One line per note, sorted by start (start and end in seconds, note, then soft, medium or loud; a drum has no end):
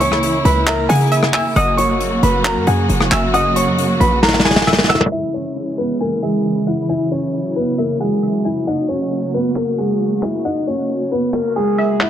0.00 0.41 C#2 loud
0.00 1.52 C#3 medium
0.00 1.53 E3 medium
0.00 5.08 A#3 medium
0.00 1.53 E4 medium
0.00 0.43 C#5 medium
0.00 0.63 G#5 loud
0.00 0.42 C#6 medium
0.00 closed hi-hat medium
0.12 cross-stick medium
0.23 closed hi-hat medium
0.45 0.88 C#2 loud
0.45 0.63 B4 medium
0.45 0.62 B5 medium
0.45 closed hi-hat medium
0.67 0.85 A#4 medium
0.67 0.88 E5 medium
0.67 0.84 A#5 medium
0.67 clap loud
0.67 closed hi-hat medium
0.89 1.32 C#3 loud
0.89 1.31 G#4 medium
0.89 1.11 F#5 medium
0.89 1.31 G#5 medium
0.89 closed hi-hat medium
0.95 closed hi-hat medium
1.01 closed hi-hat medium
1.06 closed hi-hat soft
1.12 1.33 E5 medium
1.12 closed hi-hat medium
1.23 cross-stick loud
1.34 1.51 E5 medium
1.34 1.55 G#5 loud
1.34 1.51 E6 medium
1.34 clap medium
1.34 open hi-hat medium
1.56 2.20 F#1 loud
1.56 5.08 C#3 medium
1.56 5.08 F#3 medium
1.56 5.08 F#4 medium
1.56 1.74 D#5 medium
1.56 2.41 F#5 loud
1.56 1.73 D#6 loud
1.56 closed hi-hat medium
1.77 2.20 C#5 medium
1.77 2.20 C#6 medium
1.77 closed hi-hat medium
2.00 closed hi-hat medium
2.23 2.58 F#1 loud
2.23 2.40 B4 medium
2.23 2.40 B5 medium
2.23 closed hi-hat medium
2.45 2.63 A#4 medium
2.45 2.66 A#5 medium
2.45 2.62 A#5 loud
2.45 clap loud
2.45 closed hi-hat medium
2.56 2.67 F#2 loud
2.67 2.89 F#2 loud
2.67 3.09 G#4 medium
2.67 3.09 F#5 medium
2.67 3.09 G#5 medium
2.67 closed hi-hat medium
2.89 3.11 F#1 loud
2.89 closed hi-hat medium
3.01 cross-stick loud
3.11 3.69 F#1 loud
3.11 3.29 E5 medium
3.11 3.33 G#5 medium
3.11 3.29 E6 medium
3.11 clap medium
3.11 closed hi-hat medium
3.34 3.51 D#5 medium
3.34 4.63 F#5 loud
3.34 3.51 D#6 loud
3.34 closed hi-hat medium
3.56 3.98 C#5 medium
3.56 3.98 C#6 medium
3.56 closed hi-hat medium
3.67 3.99 F#2 loud
3.78 closed hi-hat medium
4.00 5.08 A#1 loud
4.00 4.18 B4 medium
4.00 4.17 B5 medium
4.00 closed hi-hat medium
4.23 4.40 A#4 medium
4.23 4.40 A#5 loud
4.23 snare medium
4.28 snare medium
4.34 snare medium
4.39 snare medium
4.45 4.87 G#4 medium
4.45 4.87 G#5 medium
4.45 snare medium
4.51 snare medium
4.56 snare medium
4.62 snare medium
4.67 4.88 E5 medium
4.67 snare medium
4.73 snare medium
4.78 snare loud
4.84 snare medium
4.89 5.07 E5 medium
4.89 5.11 F#5 medium
4.89 5.06 E6 medium
4.89 snare loud
4.95 snare medium
5.01 snare loud
5.06 snare loud
5.12 12.10 C#3 medium
5.12 8.64 E3 medium
5.12 6.88 G#3 medium
5.12 8.64 E4 medium
5.12 5.29 E4 medium
5.12 5.29 E5 loud
5.12 5.97 E5 loud
5.12 closed hi-hat medium
5.34 5.76 C#4 medium
5.34 5.76 C#5 medium
5.34 closed hi-hat medium
5.56 closed hi-hat medium
5.78 5.96 B3 medium
5.78 5.95 B4 medium
5.78 closed hi-hat medium
6.01 6.18 A#3 medium
6.01 6.18 A#4 medium
6.01 6.22 G#5 loud
6.01 closed hi-hat medium
6.22 6.65 G#3 medium
6.22 6.64 G#4 medium
6.22 6.65 E5 medium
6.22 closed hi-hat medium
6.45 closed hi-hat medium
6.67 6.85 E4 medium
6.67 6.84 E5 medium
6.67 6.88 F#5 medium
6.67 closed hi-hat medium
6.89 12.10 F#3 medium
6.89 7.07 E4 medium
6.89 7.06 E5 loud
6.89 7.74 G#5 loud
6.89 closed hi-hat medium
7.12 7.54 C#4 medium
7.12 7.53 C#5 medium
7.12 closed hi-hat medium
7.34 closed hi-hat medium
7.56 7.74 B3 medium
7.56 7.73 B4 medium
7.56 closed hi-hat medium
7.78 7.96 A#3 medium
7.78 7.95 A#4 medium
7.78 7.99 E5 medium
7.78 closed hi-hat medium
8.00 8.43 G#3 medium
8.00 8.42 G#4 medium
8.00 8.22 F#5 medium
8.00 closed hi-hat medium
8.23 8.44 E5 medium
8.23 closed hi-hat medium
8.45 8.62 E4 medium
8.45 8.62 E5 medium
8.45 8.66 G#5 medium
8.45 closed hi-hat medium
8.67 12.10 A#3 medium
8.67 8.85 D#4 medium
8.67 12.10 F#4 medium
8.67 8.84 D#5 loud
8.67 9.52 F#5 loud
8.67 closed hi-hat medium
8.89 9.31 C#4 medium
8.89 9.31 C#5 medium
8.89 closed hi-hat medium
9.12 closed hi-hat medium
9.34 9.52 B3 medium
9.34 9.51 B4 medium
9.34 closed hi-hat medium
9.56 9.74 A#3 medium
9.56 9.73 A#4 medium
9.56 9.77 A#5 medium
9.56 clap loud
9.56 closed hi-hat medium
9.78 10.20 G#3 medium
9.78 10.20 G#4 medium
9.78 10.20 F#5 medium
9.78 closed hi-hat medium
10.00 closed hi-hat medium
10.22 10.41 E4 medium
10.22 10.40 E5 medium
10.22 10.44 G#5 medium
10.22 clap medium
10.22 closed hi-hat medium
10.45 10.62 D#4 medium
10.45 10.62 D#5 loud
10.45 11.74 F#5 loud
10.45 closed hi-hat medium
10.67 11.09 C#4 medium
10.67 11.09 C#5 medium
10.67 closed hi-hat medium
10.89 closed hi-hat medium
11.12 11.29 B3 medium
11.12 11.29 B4 medium
11.12 closed hi-hat medium
11.34 11.51 A#3 medium
11.34 11.51 A#4 medium
11.34 clap loud
11.34 closed hi-hat medium
11.56 11.98 G#3 medium
11.56 11.98 G#4 medium
11.56 closed hi-hat medium
11.78 11.99 E5 medium
11.78 closed hi-hat medium
12.00 12.10 E4 medium
12.00 12.10 E5 medium
12.00 12.10 F#5 medium
12.00 clap medium
12.00 closed hi-hat medium